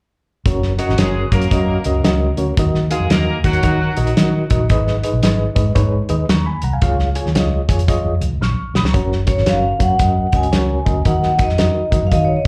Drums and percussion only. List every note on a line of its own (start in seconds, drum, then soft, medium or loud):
0.46 kick medium
0.46 closed hi-hat medium
0.63 snare soft
0.79 closed hi-hat medium
0.89 snare soft
0.98 snare medium
0.98 closed hi-hat medium
1.32 kick medium
1.32 closed hi-hat medium
1.41 closed hi-hat soft
1.51 kick medium
1.51 closed hi-hat medium
1.84 closed hi-hat medium
2.04 snare loud
2.04 closed hi-hat medium
2.37 closed hi-hat medium
2.57 kick medium
2.57 closed hi-hat medium
2.75 snare soft
2.91 closed hi-hat medium
3.10 snare medium
3.10 closed hi-hat medium
3.44 kick medium
3.44 closed hi-hat medium
3.53 closed hi-hat soft
3.63 kick medium
3.63 closed hi-hat medium
3.97 closed hi-hat medium
4.07 closed hi-hat soft
4.17 snare loud
4.17 closed hi-hat medium
4.50 kick medium
4.50 closed hi-hat medium
4.70 kick medium
4.70 closed hi-hat medium
4.87 snare soft
5.03 closed hi-hat medium
5.23 snare medium
5.23 closed hi-hat medium
5.56 kick medium
5.56 closed hi-hat medium
5.76 kick medium
5.76 closed hi-hat medium
6.09 closed hi-hat medium
6.29 snare loud
6.29 closed hi-hat medium
6.62 closed hi-hat medium
6.82 kick loud
6.82 closed hi-hat medium
6.99 snare soft
7.15 closed hi-hat medium
7.26 snare soft
7.35 snare medium
7.35 closed hi-hat medium
7.69 kick medium
7.69 closed hi-hat medium
7.79 closed hi-hat soft
7.88 kick medium
7.88 closed hi-hat medium
8.21 closed hi-hat medium
8.42 snare medium
8.75 snare medium
8.85 snare medium
8.94 kick medium
8.94 closed hi-hat medium
9.12 snare soft
9.27 kick medium
9.27 closed hi-hat medium
9.38 snare soft
9.46 snare medium
9.46 closed hi-hat medium
9.80 kick medium
9.80 closed hi-hat medium
9.99 kick medium
9.99 closed hi-hat medium
10.32 kick medium
10.32 closed hi-hat medium
10.43 closed hi-hat soft
10.53 snare medium
10.53 closed hi-hat medium
10.86 kick medium
10.86 closed hi-hat medium
11.05 kick medium
11.05 closed hi-hat medium
11.23 snare soft
11.39 kick medium
11.39 closed hi-hat medium
11.49 snare soft
11.58 snare medium
11.58 closed hi-hat medium
11.92 kick medium
11.92 closed hi-hat medium
12.12 kick medium
12.12 closed hi-hat medium